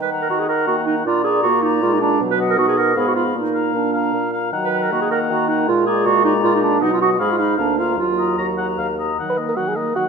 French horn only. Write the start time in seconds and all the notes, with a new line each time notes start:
0.30 D#4
0.69 A#3
1.07 D4
1.45 A#3
1.83 G#3
2.21 F#3
2.58 D#4
2.95 B3
3.35 A#3
4.53 F#3
4.91 A#3
5.68 G#3
6.83 F#3
7.20 G#3
7.58 A#3
7.98 F#3
9.19 D#3
9.57 D#3
9.96 D#3